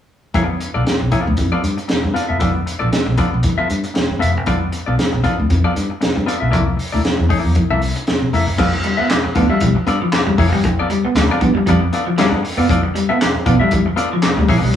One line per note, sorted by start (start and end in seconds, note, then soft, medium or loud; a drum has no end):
0.34 0.54 G1 medium
0.34 0.55 B3 medium
0.34 0.49 F4 medium
0.34 0.48 A4 medium
0.34 0.48 D5 medium
0.34 kick loud
0.34 closed hi-hat medium
0.49 muted clean electric guitar stroke soft
0.60 muted clean electric guitar stroke soft
0.60 closed hi-hat medium
0.74 0.84 B1 medium
0.74 0.85 B3 soft
0.74 0.85 F4 medium
0.74 0.86 A4 medium
0.74 0.86 D5 medium
0.86 muted clean electric guitar stroke soft
0.86 snare loud
0.86 closed hi-hat medium
1.01 1.10 B1 medium
1.01 muted clean electric guitar stroke soft
1.12 1.33 B3 medium
1.12 1.26 F4 medium
1.12 1.26 A4 medium
1.12 1.25 D5 medium
1.12 kick medium
1.12 closed hi-hat medium
1.26 1.36 D2 medium
1.26 muted clean electric guitar stroke soft
1.37 1.49 F2 medium
1.37 muted clean electric guitar stroke soft
1.37 kick medium
1.37 closed hi-hat medium
1.52 1.62 B3 medium
1.52 1.63 F4 medium
1.52 1.63 A4 medium
1.52 1.63 D5 medium
1.63 1.75 G2 medium
1.63 muted clean electric guitar stroke soft
1.63 closed hi-hat medium
1.77 muted clean electric guitar stroke soft
1.77 closed hi-hat soft
1.88 muted clean electric guitar stroke soft
1.88 snare loud
1.88 closed hi-hat medium
2.02 2.13 G2 medium
2.02 muted clean electric guitar stroke soft
2.14 2.28 B3 medium
2.14 2.28 F4 medium
2.14 2.28 A4 medium
2.14 2.28 D5 medium
2.14 closed hi-hat medium
2.29 2.39 F#1 medium
2.29 2.38 B3 soft
2.29 2.39 F4 medium
2.29 2.39 A4 medium
2.29 2.40 E5 medium
2.39 2.61 G1 loud
2.39 2.60 B3 medium
2.39 2.54 F4 medium
2.39 2.54 A4 medium
2.39 2.53 D5 medium
2.39 kick loud
2.39 closed hi-hat medium
2.54 muted clean electric guitar stroke soft
2.66 muted clean electric guitar stroke soft
2.66 closed hi-hat medium
2.79 2.90 A#1 medium
2.79 2.90 B3 soft
2.79 2.91 F4 medium
2.79 2.91 A4 medium
2.79 2.91 D5 medium
2.91 muted clean electric guitar stroke soft
2.91 muted fingered electric bass stroke soft
2.91 snare loud
2.91 closed hi-hat medium
3.06 3.16 B1 medium
3.06 muted clean electric guitar stroke medium
3.17 3.37 B3 medium
3.17 3.31 F4 medium
3.17 3.31 A4 medium
3.17 3.30 D5 medium
3.17 kick medium
3.17 closed hi-hat medium
3.32 3.42 B1 medium
3.32 muted clean electric guitar stroke soft
3.43 3.55 G1 medium
3.43 muted clean electric guitar stroke soft
3.43 kick medium
3.43 closed hi-hat medium
3.58 3.69 B3 medium
3.58 3.69 F4 medium
3.58 3.69 A4 medium
3.58 3.70 E5 medium
3.70 3.81 G2 medium
3.70 muted clean electric guitar stroke soft
3.70 closed hi-hat medium
3.84 muted clean electric guitar stroke soft
3.84 closed hi-hat soft
3.94 muted clean electric guitar stroke soft
3.94 snare loud
3.94 closed hi-hat medium
4.11 4.19 G1 medium
4.19 4.37 F1 medium
4.19 4.36 B3 medium
4.19 4.34 F4 medium
4.19 4.34 A4 medium
4.19 4.34 E5 medium
4.19 closed hi-hat medium
4.34 4.45 F#1 medium
4.34 muted clean electric guitar stroke medium
4.46 4.67 G1 loud
4.46 4.66 B3 medium
4.46 4.61 F4 medium
4.46 4.60 A4 medium
4.46 4.60 D5 medium
4.46 kick loud
4.46 closed hi-hat medium
4.61 muted clean electric guitar stroke soft
4.72 muted clean electric guitar stroke soft
4.72 closed hi-hat medium
4.86 4.96 B1 medium
4.86 4.96 B3 soft
4.86 4.97 F4 medium
4.86 4.97 A4 medium
4.86 4.97 D5 medium
4.98 muted clean electric guitar stroke soft
4.98 snare loud
4.98 closed hi-hat medium
5.13 5.22 B1 medium
5.13 muted clean electric guitar stroke soft
5.24 5.43 B3 medium
5.24 5.38 F4 medium
5.24 5.37 A4 medium
5.24 5.37 D5 medium
5.24 kick medium
5.24 closed hi-hat medium
5.38 5.48 D2 medium
5.38 muted clean electric guitar stroke medium
5.50 5.61 F2 medium
5.50 muted clean electric guitar stroke soft
5.50 kick medium
5.50 closed hi-hat medium
5.64 5.74 B3 medium
5.64 5.75 F4 medium
5.64 5.75 A4 medium
5.64 5.75 D5 medium
5.75 5.88 G2 medium
5.75 muted clean electric guitar stroke soft
5.75 closed hi-hat medium
5.90 muted clean electric guitar stroke soft
6.01 muted clean electric guitar stroke soft
6.01 snare loud
6.01 closed hi-hat medium
6.16 6.25 G2 medium
6.16 muted clean electric guitar stroke soft
6.26 6.40 B3 medium
6.26 6.40 F4 medium
6.26 6.40 A4 medium
6.26 6.40 D5 medium
6.26 closed hi-hat medium
6.40 6.53 B1 medium
6.40 6.50 B3 soft
6.40 6.51 F4 medium
6.40 6.50 A4 medium
6.40 6.51 E5 medium
6.50 6.73 C2 medium
6.50 6.71 A#3 medium
6.50 6.66 E4 medium
6.50 6.65 A4 medium
6.50 6.64 D5 medium
6.50 kick loud
6.50 closed hi-hat medium
6.66 muted clean electric guitar stroke soft
6.77 muted clean electric guitar stroke soft
6.77 open hi-hat medium
6.92 7.02 D2 medium
6.92 7.03 A#3 soft
6.92 7.03 E4 medium
6.92 7.03 A4 medium
6.92 7.04 D5 medium
7.04 muted clean electric guitar stroke soft
7.04 snare loud
7.04 closed hi-hat medium
7.18 7.28 E2 medium
7.18 muted clean electric guitar stroke soft
7.29 7.51 A#3 medium
7.29 7.43 E4 medium
7.29 7.43 A4 medium
7.29 7.42 D5 medium
7.29 kick medium
7.29 open hi-hat medium
7.44 7.54 E2 medium
7.44 muted clean electric guitar stroke soft
7.55 muted clean electric guitar stroke soft
7.55 kick loud
7.55 closed hi-hat medium
7.70 7.90 C2 medium
7.70 7.81 A#3 medium
7.70 7.82 E4 medium
7.70 7.82 A4 medium
7.70 7.84 E5 medium
7.82 muted clean electric guitar stroke soft
7.82 open hi-hat medium
7.95 muted clean electric guitar stroke soft
7.95 closed hi-hat soft
8.07 muted clean electric guitar stroke soft
8.07 snare loud
8.07 closed hi-hat medium
8.22 8.31 C3 medium
8.33 8.44 F1 medium
8.33 8.49 A#3 medium
8.33 8.47 E4 medium
8.33 8.47 A4 medium
8.33 8.47 E5 medium
8.33 open hi-hat medium
8.47 8.57 F#1 medium
8.47 muted clean electric guitar stroke medium
8.58 8.79 G1 loud
8.58 8.78 B3 medium
8.58 8.73 F4 loud
8.58 8.72 A4 loud
8.58 8.72 D5 medium
8.58 kick loud
8.58 crash medium
8.73 muted clean electric guitar stroke soft
8.84 8.96 G3 medium
8.84 muted clean electric guitar stroke soft
8.84 closed hi-hat medium
8.97 9.07 B3 medium
8.97 9.08 B3 medium
8.97 9.08 F4 medium
8.97 9.08 A4 medium
8.97 9.10 E5 medium
8.97 muted fingered electric bass stroke soft
9.09 muted clean electric guitar stroke soft
9.09 snare loud
9.09 clap medium
9.09 closed hi-hat medium
9.24 muted clean electric guitar stroke medium
9.24 muted fingered electric bass stroke soft
9.35 9.47 D2 medium
9.35 9.50 B3 medium
9.35 9.47 B3 medium
9.35 9.49 F4 medium
9.35 9.49 A4 medium
9.35 9.49 D5 medium
9.35 kick medium
9.35 closed hi-hat medium
9.50 9.59 G3 medium
9.50 9.64 B3 medium
9.50 9.63 F4 medium
9.50 9.63 A4 medium
9.50 9.63 E5 medium
9.60 9.73 B1 medium
9.60 9.73 G3 medium
9.60 kick medium
9.60 closed hi-hat medium
9.76 muted clean electric guitar stroke soft
9.87 9.98 G2 loud
9.87 10.06 B3 medium
9.87 10.00 F4 medium
9.87 10.00 A4 medium
9.87 10.00 D5 medium
9.87 closed hi-hat medium
10.01 10.11 F3 medium
10.01 muted clean electric guitar stroke soft
10.12 snare loud
10.12 clap medium
10.12 closed hi-hat medium
10.27 10.36 G1 medium
10.27 10.36 G3 medium
10.27 muted clean electric guitar stroke soft
10.38 10.52 F1 medium
10.38 10.59 B3 medium
10.38 10.53 F4 medium
10.38 10.53 A4 loud
10.38 10.52 D5 loud
10.38 muted clean electric guitar stroke soft
10.38 kick medium
10.38 open hi-hat medium
10.52 10.64 F#1 medium
10.52 10.62 G3 medium
10.52 muted clean electric guitar stroke soft
10.64 10.84 G1 loud
10.64 muted clean electric guitar stroke soft
10.64 kick loud
10.64 closed hi-hat medium
10.79 10.89 B3 medium
10.79 10.90 F4 medium
10.79 10.90 A4 medium
10.79 10.90 D5 medium
10.79 muted clean electric guitar stroke soft
10.90 11.01 G3 medium
10.90 muted clean electric guitar stroke soft
10.90 closed hi-hat medium
11.04 11.13 B3 medium
11.04 muted fingered electric bass stroke soft
11.04 muted clean electric guitar stroke soft
11.15 11.26 D2 medium
11.15 muted clean electric guitar stroke soft
11.15 snare loud
11.15 clap loud
11.15 closed hi-hat medium
11.31 11.42 B3 medium
11.31 11.42 F4 medium
11.31 11.42 A4 medium
11.31 11.43 D5 medium
11.41 11.52 G2 loud
11.41 11.52 B3 medium
11.41 muted clean electric guitar stroke soft
11.41 kick medium
11.41 closed hi-hat medium
11.55 11.64 G3 medium
11.55 muted clean electric guitar stroke medium
11.66 11.87 F2 medium
11.66 11.78 G3 medium
11.66 11.87 B3 medium
11.66 11.83 F4 medium
11.66 11.82 A4 medium
11.66 11.81 D5 medium
11.66 kick medium
11.66 closed hi-hat medium
11.83 muted clean electric guitar stroke soft
11.93 12.08 B3 medium
11.93 12.07 F4 medium
11.93 12.06 A4 medium
11.93 12.06 D5 medium
11.93 closed hi-hat medium
12.07 12.15 F3 medium
12.07 muted clean electric guitar stroke soft
12.18 12.29 G3 medium
12.18 12.39 B3 medium
12.18 12.39 F4 medium
12.18 12.39 A4 medium
12.18 12.39 D5 medium
12.18 snare loud
12.18 clap medium
12.18 closed hi-hat medium
12.32 12.41 G2 medium
12.44 muted clean electric guitar stroke soft
12.44 open hi-hat medium
12.57 12.66 F#1 medium
12.57 12.66 B3 medium
12.57 12.68 B3 medium
12.57 12.69 F4 medium
12.57 12.69 A4 medium
12.57 12.70 D5 medium
12.69 12.89 G1 loud
12.69 12.89 B3 medium
12.69 12.83 F4 medium
12.69 12.83 A4 medium
12.69 12.82 D5 loud
12.69 kick loud
12.69 closed hi-hat medium
12.83 muted clean electric guitar stroke soft
12.95 13.06 G3 medium
12.95 muted clean electric guitar stroke soft
12.95 closed hi-hat medium
13.09 13.18 B3 medium
13.09 13.19 F4 medium
13.09 13.19 A4 medium
13.09 13.20 E5 medium
13.09 muted fingered electric bass stroke soft
13.20 muted clean electric guitar stroke soft
13.20 snare loud
13.20 clap medium
13.20 closed hi-hat medium
13.35 muted clean electric guitar stroke soft
13.35 muted fingered electric bass stroke soft
13.46 13.57 B1 loud
13.46 13.60 B3 medium
13.46 13.58 B3 medium
13.46 13.59 F4 medium
13.46 13.59 A4 medium
13.46 13.59 D5 medium
13.46 kick medium
13.46 closed hi-hat medium
13.60 13.70 G3 medium
13.60 13.74 B3 medium
13.60 13.73 F4 medium
13.60 13.73 A4 medium
13.60 13.73 E5 medium
13.71 13.92 G1 medium
13.71 13.83 G3 medium
13.71 kick loud
13.71 closed hi-hat medium
13.86 muted clean electric guitar stroke medium
13.96 14.16 B3 medium
13.96 14.11 F4 medium
13.96 14.11 A4 medium
13.96 14.10 D5 loud
13.96 closed hi-hat medium
14.12 14.21 F3 medium
14.12 muted clean electric guitar stroke soft
14.22 snare loud
14.22 clap medium
14.22 closed hi-hat medium
14.37 14.46 D2 medium
14.37 14.47 G3 medium
14.37 muted clean electric guitar stroke soft
14.48 14.59 A#1 loud
14.48 14.69 B3 loud
14.48 14.63 F4 medium
14.48 14.62 A4 loud
14.48 14.61 D5 loud
14.48 muted clean electric guitar stroke soft
14.48 kick medium
14.48 open hi-hat medium
14.62 14.71 B1 medium
14.62 14.73 G3 medium
14.62 muted clean electric guitar stroke soft
14.72 muted clean electric guitar stroke soft